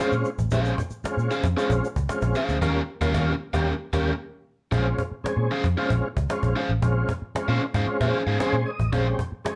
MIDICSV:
0, 0, Header, 1, 7, 480
1, 0, Start_track
1, 0, Tempo, 525394
1, 474, Time_signature, 4, 2, 24, 8
1, 8729, End_track
2, 0, Start_track
2, 0, Title_t, "Overdriven electric guitar"
2, 0, Program_c, 0, 29
2, 0, Note_on_c, 0, 61, 83
2, 0, Note_on_c, 0, 68, 82
2, 0, Note_on_c, 0, 72, 87
2, 2, Note_on_c, 0, 77, 87
2, 110, Note_off_c, 0, 61, 0
2, 112, Note_off_c, 0, 68, 0
2, 114, Note_off_c, 0, 72, 0
2, 115, Note_off_c, 0, 77, 0
2, 476, Note_on_c, 0, 61, 84
2, 481, Note_on_c, 0, 68, 90
2, 486, Note_on_c, 0, 72, 90
2, 488, Note_on_c, 0, 77, 100
2, 658, Note_off_c, 0, 61, 0
2, 660, Note_off_c, 0, 68, 0
2, 662, Note_off_c, 0, 72, 0
2, 664, Note_off_c, 0, 77, 0
2, 1197, Note_on_c, 0, 61, 100
2, 1198, Note_on_c, 0, 68, 96
2, 1203, Note_on_c, 0, 72, 91
2, 1204, Note_on_c, 0, 77, 96
2, 1313, Note_off_c, 0, 61, 0
2, 1313, Note_off_c, 0, 68, 0
2, 1316, Note_off_c, 0, 72, 0
2, 1316, Note_off_c, 0, 77, 0
2, 1434, Note_on_c, 0, 61, 84
2, 1442, Note_on_c, 0, 68, 81
2, 1444, Note_on_c, 0, 72, 84
2, 1446, Note_on_c, 0, 77, 95
2, 1551, Note_off_c, 0, 61, 0
2, 1555, Note_off_c, 0, 68, 0
2, 1556, Note_off_c, 0, 72, 0
2, 1558, Note_off_c, 0, 77, 0
2, 2153, Note_on_c, 0, 61, 89
2, 2153, Note_on_c, 0, 68, 79
2, 2159, Note_on_c, 0, 72, 90
2, 2162, Note_on_c, 0, 77, 94
2, 2336, Note_off_c, 0, 61, 0
2, 2336, Note_off_c, 0, 68, 0
2, 2339, Note_off_c, 0, 72, 0
2, 2341, Note_off_c, 0, 77, 0
2, 2391, Note_on_c, 0, 77, 98
2, 2393, Note_on_c, 0, 70, 110
2, 2398, Note_on_c, 0, 67, 103
2, 2401, Note_on_c, 0, 61, 106
2, 2556, Note_off_c, 0, 77, 0
2, 2557, Note_off_c, 0, 70, 0
2, 2560, Note_off_c, 0, 67, 0
2, 2562, Note_off_c, 0, 61, 0
2, 2753, Note_on_c, 0, 70, 96
2, 2753, Note_on_c, 0, 77, 96
2, 2760, Note_on_c, 0, 67, 105
2, 2761, Note_on_c, 0, 61, 95
2, 2856, Note_off_c, 0, 70, 0
2, 2856, Note_off_c, 0, 77, 0
2, 2860, Note_off_c, 0, 67, 0
2, 2861, Note_off_c, 0, 61, 0
2, 2871, Note_on_c, 0, 77, 95
2, 2876, Note_on_c, 0, 67, 88
2, 2877, Note_on_c, 0, 70, 90
2, 2881, Note_on_c, 0, 61, 97
2, 3036, Note_off_c, 0, 77, 0
2, 3039, Note_off_c, 0, 67, 0
2, 3039, Note_off_c, 0, 70, 0
2, 3042, Note_off_c, 0, 61, 0
2, 3230, Note_on_c, 0, 77, 96
2, 3238, Note_on_c, 0, 70, 99
2, 3239, Note_on_c, 0, 67, 104
2, 3243, Note_on_c, 0, 61, 100
2, 3396, Note_off_c, 0, 77, 0
2, 3400, Note_off_c, 0, 70, 0
2, 3401, Note_off_c, 0, 67, 0
2, 3403, Note_off_c, 0, 61, 0
2, 3593, Note_on_c, 0, 77, 89
2, 3600, Note_on_c, 0, 70, 93
2, 3602, Note_on_c, 0, 67, 93
2, 3606, Note_on_c, 0, 61, 96
2, 3757, Note_off_c, 0, 77, 0
2, 3761, Note_off_c, 0, 70, 0
2, 3762, Note_off_c, 0, 67, 0
2, 3765, Note_off_c, 0, 61, 0
2, 4309, Note_on_c, 0, 61, 70
2, 4314, Note_on_c, 0, 68, 81
2, 4314, Note_on_c, 0, 72, 94
2, 4318, Note_on_c, 0, 77, 88
2, 4429, Note_off_c, 0, 61, 0
2, 4432, Note_off_c, 0, 68, 0
2, 4432, Note_off_c, 0, 72, 0
2, 4434, Note_off_c, 0, 77, 0
2, 5036, Note_on_c, 0, 61, 101
2, 5038, Note_on_c, 0, 68, 90
2, 5042, Note_on_c, 0, 72, 94
2, 5044, Note_on_c, 0, 77, 91
2, 5153, Note_off_c, 0, 61, 0
2, 5154, Note_off_c, 0, 68, 0
2, 5156, Note_off_c, 0, 72, 0
2, 5157, Note_off_c, 0, 77, 0
2, 5277, Note_on_c, 0, 61, 90
2, 5283, Note_on_c, 0, 68, 89
2, 5287, Note_on_c, 0, 72, 88
2, 5288, Note_on_c, 0, 77, 103
2, 5393, Note_off_c, 0, 61, 0
2, 5396, Note_off_c, 0, 68, 0
2, 5398, Note_off_c, 0, 72, 0
2, 5399, Note_off_c, 0, 77, 0
2, 5992, Note_on_c, 0, 61, 89
2, 5998, Note_on_c, 0, 68, 92
2, 5999, Note_on_c, 0, 72, 98
2, 6002, Note_on_c, 0, 77, 104
2, 6111, Note_off_c, 0, 61, 0
2, 6113, Note_off_c, 0, 68, 0
2, 6114, Note_off_c, 0, 72, 0
2, 6116, Note_off_c, 0, 77, 0
2, 6837, Note_on_c, 0, 77, 80
2, 6841, Note_on_c, 0, 72, 84
2, 6845, Note_on_c, 0, 68, 77
2, 6847, Note_on_c, 0, 61, 67
2, 6953, Note_off_c, 0, 77, 0
2, 6955, Note_off_c, 0, 72, 0
2, 6957, Note_off_c, 0, 68, 0
2, 6958, Note_off_c, 0, 61, 0
2, 7082, Note_on_c, 0, 77, 65
2, 7086, Note_on_c, 0, 72, 57
2, 7088, Note_on_c, 0, 68, 52
2, 7092, Note_on_c, 0, 61, 53
2, 7170, Note_off_c, 0, 77, 0
2, 7172, Note_off_c, 0, 72, 0
2, 7173, Note_off_c, 0, 68, 0
2, 7175, Note_off_c, 0, 61, 0
2, 7318, Note_on_c, 0, 77, 80
2, 7322, Note_on_c, 0, 72, 77
2, 7325, Note_on_c, 0, 68, 72
2, 7328, Note_on_c, 0, 61, 65
2, 7499, Note_off_c, 0, 77, 0
2, 7501, Note_off_c, 0, 72, 0
2, 7502, Note_off_c, 0, 68, 0
2, 7503, Note_off_c, 0, 61, 0
2, 7555, Note_on_c, 0, 77, 72
2, 7562, Note_on_c, 0, 72, 68
2, 7565, Note_on_c, 0, 68, 58
2, 7568, Note_on_c, 0, 61, 53
2, 7646, Note_off_c, 0, 77, 0
2, 7650, Note_off_c, 0, 72, 0
2, 7651, Note_off_c, 0, 68, 0
2, 7653, Note_off_c, 0, 61, 0
2, 7678, Note_on_c, 0, 61, 81
2, 7684, Note_on_c, 0, 68, 101
2, 7686, Note_on_c, 0, 77, 99
2, 7687, Note_on_c, 0, 72, 99
2, 7793, Note_off_c, 0, 61, 0
2, 7796, Note_off_c, 0, 68, 0
2, 7797, Note_off_c, 0, 77, 0
2, 7798, Note_off_c, 0, 72, 0
2, 8157, Note_on_c, 0, 61, 86
2, 8161, Note_on_c, 0, 68, 78
2, 8164, Note_on_c, 0, 77, 98
2, 8165, Note_on_c, 0, 72, 98
2, 8273, Note_off_c, 0, 61, 0
2, 8275, Note_off_c, 0, 68, 0
2, 8276, Note_off_c, 0, 72, 0
2, 8276, Note_off_c, 0, 77, 0
2, 8729, End_track
3, 0, Start_track
3, 0, Title_t, "Tonewheel organ"
3, 0, Program_c, 1, 16
3, 0, Note_on_c, 1, 56, 91
3, 0, Note_on_c, 1, 60, 82
3, 0, Note_on_c, 1, 61, 97
3, 0, Note_on_c, 1, 65, 115
3, 274, Note_off_c, 1, 56, 0
3, 274, Note_off_c, 1, 60, 0
3, 276, Note_off_c, 1, 61, 0
3, 277, Note_off_c, 1, 65, 0
3, 468, Note_on_c, 1, 56, 90
3, 472, Note_on_c, 1, 60, 75
3, 474, Note_on_c, 1, 61, 77
3, 475, Note_on_c, 1, 67, 89
3, 754, Note_off_c, 1, 56, 0
3, 755, Note_off_c, 1, 60, 0
3, 756, Note_off_c, 1, 61, 0
3, 757, Note_off_c, 1, 67, 0
3, 951, Note_on_c, 1, 56, 93
3, 953, Note_on_c, 1, 60, 81
3, 954, Note_on_c, 1, 61, 71
3, 955, Note_on_c, 1, 65, 96
3, 1235, Note_off_c, 1, 56, 0
3, 1236, Note_off_c, 1, 60, 0
3, 1237, Note_off_c, 1, 61, 0
3, 1237, Note_off_c, 1, 65, 0
3, 1430, Note_on_c, 1, 56, 95
3, 1432, Note_on_c, 1, 60, 84
3, 1434, Note_on_c, 1, 61, 90
3, 1437, Note_on_c, 1, 65, 114
3, 1715, Note_off_c, 1, 56, 0
3, 1716, Note_off_c, 1, 60, 0
3, 1717, Note_off_c, 1, 61, 0
3, 1718, Note_off_c, 1, 65, 0
3, 1911, Note_on_c, 1, 56, 85
3, 1913, Note_on_c, 1, 60, 83
3, 1915, Note_on_c, 1, 61, 84
3, 1919, Note_on_c, 1, 65, 94
3, 2196, Note_off_c, 1, 56, 0
3, 2197, Note_off_c, 1, 60, 0
3, 2197, Note_off_c, 1, 61, 0
3, 2199, Note_off_c, 1, 65, 0
3, 2390, Note_on_c, 1, 55, 95
3, 2393, Note_on_c, 1, 58, 98
3, 2395, Note_on_c, 1, 61, 106
3, 2399, Note_on_c, 1, 65, 91
3, 2555, Note_off_c, 1, 55, 0
3, 2557, Note_off_c, 1, 58, 0
3, 2558, Note_off_c, 1, 61, 0
3, 2560, Note_off_c, 1, 65, 0
3, 2751, Note_on_c, 1, 55, 99
3, 2752, Note_on_c, 1, 58, 96
3, 2754, Note_on_c, 1, 61, 98
3, 2757, Note_on_c, 1, 65, 100
3, 2855, Note_off_c, 1, 55, 0
3, 2856, Note_off_c, 1, 58, 0
3, 2857, Note_off_c, 1, 61, 0
3, 2858, Note_off_c, 1, 65, 0
3, 2873, Note_on_c, 1, 55, 105
3, 2875, Note_on_c, 1, 58, 101
3, 2877, Note_on_c, 1, 61, 92
3, 2879, Note_on_c, 1, 65, 100
3, 3037, Note_off_c, 1, 55, 0
3, 3038, Note_off_c, 1, 58, 0
3, 3039, Note_off_c, 1, 61, 0
3, 3040, Note_off_c, 1, 65, 0
3, 3234, Note_on_c, 1, 58, 89
3, 3235, Note_on_c, 1, 55, 97
3, 3237, Note_on_c, 1, 61, 97
3, 3239, Note_on_c, 1, 67, 95
3, 3398, Note_off_c, 1, 55, 0
3, 3398, Note_off_c, 1, 58, 0
3, 3400, Note_off_c, 1, 61, 0
3, 3401, Note_off_c, 1, 67, 0
3, 3590, Note_on_c, 1, 55, 108
3, 3593, Note_on_c, 1, 58, 117
3, 3595, Note_on_c, 1, 61, 117
3, 3597, Note_on_c, 1, 67, 109
3, 3756, Note_off_c, 1, 55, 0
3, 3757, Note_off_c, 1, 58, 0
3, 3759, Note_off_c, 1, 61, 0
3, 3760, Note_off_c, 1, 67, 0
3, 4310, Note_on_c, 1, 56, 81
3, 4313, Note_on_c, 1, 60, 82
3, 4314, Note_on_c, 1, 61, 74
3, 4318, Note_on_c, 1, 65, 96
3, 4595, Note_off_c, 1, 56, 0
3, 4597, Note_off_c, 1, 60, 0
3, 4597, Note_off_c, 1, 61, 0
3, 4599, Note_off_c, 1, 65, 0
3, 4787, Note_on_c, 1, 56, 88
3, 4788, Note_on_c, 1, 60, 83
3, 4791, Note_on_c, 1, 61, 85
3, 4794, Note_on_c, 1, 68, 88
3, 5074, Note_off_c, 1, 56, 0
3, 5074, Note_off_c, 1, 60, 0
3, 5076, Note_off_c, 1, 61, 0
3, 5077, Note_off_c, 1, 68, 0
3, 5267, Note_on_c, 1, 56, 100
3, 5269, Note_on_c, 1, 60, 95
3, 5271, Note_on_c, 1, 61, 95
3, 5275, Note_on_c, 1, 65, 105
3, 5553, Note_off_c, 1, 56, 0
3, 5554, Note_off_c, 1, 60, 0
3, 5555, Note_off_c, 1, 61, 0
3, 5558, Note_off_c, 1, 65, 0
3, 5752, Note_on_c, 1, 56, 97
3, 5752, Note_on_c, 1, 60, 82
3, 5754, Note_on_c, 1, 61, 87
3, 5759, Note_on_c, 1, 65, 104
3, 6036, Note_off_c, 1, 56, 0
3, 6036, Note_off_c, 1, 60, 0
3, 6037, Note_off_c, 1, 61, 0
3, 6040, Note_off_c, 1, 65, 0
3, 6228, Note_on_c, 1, 56, 86
3, 6231, Note_on_c, 1, 60, 87
3, 6234, Note_on_c, 1, 61, 77
3, 6235, Note_on_c, 1, 65, 88
3, 6514, Note_off_c, 1, 56, 0
3, 6515, Note_off_c, 1, 60, 0
3, 6517, Note_off_c, 1, 61, 0
3, 6517, Note_off_c, 1, 65, 0
3, 6715, Note_on_c, 1, 56, 91
3, 6718, Note_on_c, 1, 60, 89
3, 6718, Note_on_c, 1, 61, 80
3, 6721, Note_on_c, 1, 65, 93
3, 6997, Note_off_c, 1, 56, 0
3, 6998, Note_off_c, 1, 60, 0
3, 6999, Note_off_c, 1, 61, 0
3, 7000, Note_off_c, 1, 65, 0
3, 7192, Note_on_c, 1, 56, 96
3, 7193, Note_on_c, 1, 60, 100
3, 7196, Note_on_c, 1, 61, 93
3, 7198, Note_on_c, 1, 65, 121
3, 7433, Note_on_c, 1, 68, 85
3, 7476, Note_off_c, 1, 56, 0
3, 7476, Note_off_c, 1, 60, 0
3, 7478, Note_off_c, 1, 61, 0
3, 7479, Note_off_c, 1, 65, 0
3, 7657, Note_off_c, 1, 68, 0
3, 7670, Note_on_c, 1, 56, 111
3, 7671, Note_on_c, 1, 60, 91
3, 7673, Note_on_c, 1, 61, 86
3, 7673, Note_on_c, 1, 72, 79
3, 7676, Note_on_c, 1, 68, 116
3, 7897, Note_off_c, 1, 72, 0
3, 7914, Note_on_c, 1, 75, 79
3, 7955, Note_off_c, 1, 56, 0
3, 7955, Note_off_c, 1, 60, 0
3, 7956, Note_off_c, 1, 61, 0
3, 7957, Note_off_c, 1, 68, 0
3, 8137, Note_off_c, 1, 75, 0
3, 8148, Note_on_c, 1, 56, 88
3, 8150, Note_on_c, 1, 60, 88
3, 8151, Note_on_c, 1, 61, 75
3, 8154, Note_on_c, 1, 67, 96
3, 8434, Note_off_c, 1, 56, 0
3, 8435, Note_off_c, 1, 60, 0
3, 8435, Note_off_c, 1, 61, 0
3, 8436, Note_off_c, 1, 67, 0
3, 8630, Note_on_c, 1, 56, 92
3, 8633, Note_on_c, 1, 60, 81
3, 8634, Note_on_c, 1, 61, 89
3, 8636, Note_on_c, 1, 68, 93
3, 8729, Note_off_c, 1, 56, 0
3, 8729, Note_off_c, 1, 60, 0
3, 8729, Note_off_c, 1, 61, 0
3, 8729, Note_off_c, 1, 68, 0
3, 8729, End_track
4, 0, Start_track
4, 0, Title_t, "Picked electric bass"
4, 0, Program_c, 2, 34
4, 111, Note_on_c, 2, 46, 99
4, 202, Note_off_c, 2, 46, 0
4, 352, Note_on_c, 2, 33, 93
4, 443, Note_off_c, 2, 33, 0
4, 474, Note_on_c, 2, 34, 102
4, 655, Note_off_c, 2, 34, 0
4, 1072, Note_on_c, 2, 46, 89
4, 1163, Note_off_c, 2, 46, 0
4, 1312, Note_on_c, 2, 41, 80
4, 1403, Note_off_c, 2, 41, 0
4, 1553, Note_on_c, 2, 34, 76
4, 1644, Note_off_c, 2, 34, 0
4, 1793, Note_on_c, 2, 37, 85
4, 1884, Note_off_c, 2, 37, 0
4, 2031, Note_on_c, 2, 34, 90
4, 2123, Note_off_c, 2, 34, 0
4, 2272, Note_on_c, 2, 38, 81
4, 2386, Note_off_c, 2, 38, 0
4, 2392, Note_on_c, 2, 39, 102
4, 2557, Note_off_c, 2, 39, 0
4, 2752, Note_on_c, 2, 39, 99
4, 2855, Note_off_c, 2, 39, 0
4, 2873, Note_on_c, 2, 39, 107
4, 3037, Note_off_c, 2, 39, 0
4, 3231, Note_on_c, 2, 39, 93
4, 3396, Note_off_c, 2, 39, 0
4, 3593, Note_on_c, 2, 39, 96
4, 3757, Note_off_c, 2, 39, 0
4, 4315, Note_on_c, 2, 34, 103
4, 4495, Note_off_c, 2, 34, 0
4, 4905, Note_on_c, 2, 46, 104
4, 4999, Note_off_c, 2, 46, 0
4, 5155, Note_on_c, 2, 41, 84
4, 5245, Note_off_c, 2, 41, 0
4, 5395, Note_on_c, 2, 34, 95
4, 5485, Note_off_c, 2, 34, 0
4, 5634, Note_on_c, 2, 37, 100
4, 5725, Note_off_c, 2, 37, 0
4, 5875, Note_on_c, 2, 34, 89
4, 5965, Note_off_c, 2, 34, 0
4, 6114, Note_on_c, 2, 33, 90
4, 6204, Note_off_c, 2, 33, 0
4, 6235, Note_on_c, 2, 34, 110
4, 6415, Note_off_c, 2, 34, 0
4, 6837, Note_on_c, 2, 46, 98
4, 6926, Note_off_c, 2, 46, 0
4, 7076, Note_on_c, 2, 44, 87
4, 7165, Note_off_c, 2, 44, 0
4, 7315, Note_on_c, 2, 46, 94
4, 7405, Note_off_c, 2, 46, 0
4, 7553, Note_on_c, 2, 44, 92
4, 7644, Note_off_c, 2, 44, 0
4, 7793, Note_on_c, 2, 46, 103
4, 7883, Note_off_c, 2, 46, 0
4, 8035, Note_on_c, 2, 33, 79
4, 8125, Note_off_c, 2, 33, 0
4, 8155, Note_on_c, 2, 34, 101
4, 8335, Note_off_c, 2, 34, 0
4, 8729, End_track
5, 0, Start_track
5, 0, Title_t, "Cajon"
5, 0, Note_on_c, 9, 38, 104
5, 88, Note_off_c, 9, 38, 0
5, 233, Note_on_c, 9, 38, 38
5, 325, Note_off_c, 9, 38, 0
5, 353, Note_on_c, 9, 36, 88
5, 444, Note_off_c, 9, 36, 0
5, 474, Note_on_c, 9, 36, 103
5, 566, Note_off_c, 9, 36, 0
5, 714, Note_on_c, 9, 36, 106
5, 805, Note_off_c, 9, 36, 0
5, 963, Note_on_c, 9, 38, 127
5, 1054, Note_off_c, 9, 38, 0
5, 1190, Note_on_c, 9, 38, 41
5, 1281, Note_off_c, 9, 38, 0
5, 1312, Note_on_c, 9, 36, 103
5, 1317, Note_on_c, 9, 38, 39
5, 1404, Note_off_c, 9, 36, 0
5, 1409, Note_off_c, 9, 38, 0
5, 1552, Note_on_c, 9, 36, 108
5, 1644, Note_off_c, 9, 36, 0
5, 1792, Note_on_c, 9, 36, 99
5, 1884, Note_off_c, 9, 36, 0
5, 1912, Note_on_c, 9, 38, 113
5, 2003, Note_off_c, 9, 38, 0
5, 2031, Note_on_c, 9, 36, 93
5, 2034, Note_on_c, 9, 38, 36
5, 2122, Note_off_c, 9, 36, 0
5, 2125, Note_off_c, 9, 38, 0
5, 2392, Note_on_c, 9, 36, 108
5, 2397, Note_on_c, 9, 38, 98
5, 2484, Note_off_c, 9, 36, 0
5, 2488, Note_off_c, 9, 38, 0
5, 2753, Note_on_c, 9, 36, 107
5, 2756, Note_on_c, 9, 38, 97
5, 2844, Note_off_c, 9, 36, 0
5, 2848, Note_off_c, 9, 38, 0
5, 2872, Note_on_c, 9, 36, 111
5, 2876, Note_on_c, 9, 38, 98
5, 2964, Note_off_c, 9, 36, 0
5, 2967, Note_off_c, 9, 38, 0
5, 3232, Note_on_c, 9, 36, 104
5, 3235, Note_on_c, 9, 38, 109
5, 3324, Note_off_c, 9, 36, 0
5, 3326, Note_off_c, 9, 38, 0
5, 3593, Note_on_c, 9, 36, 114
5, 3596, Note_on_c, 9, 38, 124
5, 3684, Note_off_c, 9, 36, 0
5, 3688, Note_off_c, 9, 38, 0
5, 4313, Note_on_c, 9, 36, 122
5, 4405, Note_off_c, 9, 36, 0
5, 4554, Note_on_c, 9, 36, 95
5, 4646, Note_off_c, 9, 36, 0
5, 4804, Note_on_c, 9, 38, 123
5, 4895, Note_off_c, 9, 38, 0
5, 5030, Note_on_c, 9, 38, 45
5, 5121, Note_off_c, 9, 38, 0
5, 5153, Note_on_c, 9, 36, 98
5, 5159, Note_on_c, 9, 38, 38
5, 5244, Note_off_c, 9, 36, 0
5, 5250, Note_off_c, 9, 38, 0
5, 5394, Note_on_c, 9, 36, 106
5, 5485, Note_off_c, 9, 36, 0
5, 5633, Note_on_c, 9, 36, 94
5, 5725, Note_off_c, 9, 36, 0
5, 5755, Note_on_c, 9, 38, 107
5, 5846, Note_off_c, 9, 38, 0
5, 5873, Note_on_c, 9, 36, 92
5, 5879, Note_on_c, 9, 38, 36
5, 5965, Note_off_c, 9, 36, 0
5, 5971, Note_off_c, 9, 38, 0
5, 6235, Note_on_c, 9, 36, 119
5, 6326, Note_off_c, 9, 36, 0
5, 6475, Note_on_c, 9, 36, 106
5, 6566, Note_off_c, 9, 36, 0
5, 6722, Note_on_c, 9, 38, 127
5, 6813, Note_off_c, 9, 38, 0
5, 6951, Note_on_c, 9, 38, 40
5, 7043, Note_off_c, 9, 38, 0
5, 7075, Note_on_c, 9, 36, 110
5, 7080, Note_on_c, 9, 38, 41
5, 7166, Note_off_c, 9, 36, 0
5, 7172, Note_off_c, 9, 38, 0
5, 7200, Note_on_c, 9, 38, 51
5, 7292, Note_off_c, 9, 38, 0
5, 7316, Note_on_c, 9, 36, 91
5, 7407, Note_off_c, 9, 36, 0
5, 7676, Note_on_c, 9, 38, 126
5, 7768, Note_off_c, 9, 38, 0
5, 7914, Note_on_c, 9, 38, 42
5, 8005, Note_off_c, 9, 38, 0
5, 8035, Note_on_c, 9, 36, 84
5, 8127, Note_off_c, 9, 36, 0
5, 8156, Note_on_c, 9, 36, 116
5, 8247, Note_off_c, 9, 36, 0
5, 8396, Note_on_c, 9, 36, 105
5, 8487, Note_off_c, 9, 36, 0
5, 8641, Note_on_c, 9, 38, 127
5, 8729, Note_off_c, 9, 38, 0
5, 8729, End_track
6, 0, Start_track
6, 0, Title_t, "Muted picked electric bass strokes"
6, 829, Note_on_c, 9, 29, 43
6, 920, Note_off_c, 9, 29, 0
6, 952, Note_on_c, 9, 29, 52
6, 1043, Note_off_c, 9, 29, 0
6, 1914, Note_on_c, 9, 29, 47
6, 2006, Note_off_c, 9, 29, 0
6, 4673, Note_on_c, 9, 29, 50
6, 4765, Note_off_c, 9, 29, 0
6, 4790, Note_on_c, 9, 29, 50
6, 4881, Note_off_c, 9, 29, 0
6, 6596, Note_on_c, 9, 29, 44
6, 6687, Note_off_c, 9, 29, 0
6, 6716, Note_on_c, 9, 29, 57
6, 6807, Note_off_c, 9, 29, 0
6, 7199, Note_on_c, 9, 29, 45
6, 7290, Note_off_c, 9, 29, 0
6, 8516, Note_on_c, 9, 29, 46
6, 8607, Note_off_c, 9, 29, 0
6, 8637, Note_on_c, 9, 29, 54
6, 8728, Note_off_c, 9, 29, 0
6, 8729, End_track
7, 0, Start_track
7, 0, Title_t, "Drums"
7, 1, Note_on_c, 9, 82, 77
7, 92, Note_off_c, 9, 82, 0
7, 110, Note_on_c, 9, 82, 53
7, 202, Note_off_c, 9, 82, 0
7, 226, Note_on_c, 9, 82, 55
7, 317, Note_off_c, 9, 82, 0
7, 355, Note_on_c, 9, 82, 63
7, 446, Note_off_c, 9, 82, 0
7, 466, Note_on_c, 9, 82, 96
7, 557, Note_off_c, 9, 82, 0
7, 593, Note_on_c, 9, 82, 66
7, 684, Note_off_c, 9, 82, 0
7, 725, Note_on_c, 9, 82, 60
7, 816, Note_off_c, 9, 82, 0
7, 825, Note_on_c, 9, 82, 51
7, 916, Note_off_c, 9, 82, 0
7, 955, Note_on_c, 9, 82, 86
7, 1047, Note_off_c, 9, 82, 0
7, 1084, Note_on_c, 9, 82, 47
7, 1176, Note_off_c, 9, 82, 0
7, 1194, Note_on_c, 9, 82, 54
7, 1285, Note_off_c, 9, 82, 0
7, 1330, Note_on_c, 9, 82, 49
7, 1421, Note_off_c, 9, 82, 0
7, 1445, Note_on_c, 9, 82, 68
7, 1537, Note_off_c, 9, 82, 0
7, 1563, Note_on_c, 9, 82, 60
7, 1655, Note_off_c, 9, 82, 0
7, 1685, Note_on_c, 9, 82, 60
7, 1777, Note_off_c, 9, 82, 0
7, 1799, Note_on_c, 9, 82, 48
7, 1890, Note_off_c, 9, 82, 0
7, 1918, Note_on_c, 9, 82, 77
7, 2009, Note_off_c, 9, 82, 0
7, 2025, Note_on_c, 9, 82, 53
7, 2116, Note_off_c, 9, 82, 0
7, 2144, Note_on_c, 9, 82, 59
7, 2235, Note_off_c, 9, 82, 0
7, 2273, Note_on_c, 9, 82, 60
7, 2364, Note_off_c, 9, 82, 0
7, 8729, End_track
0, 0, End_of_file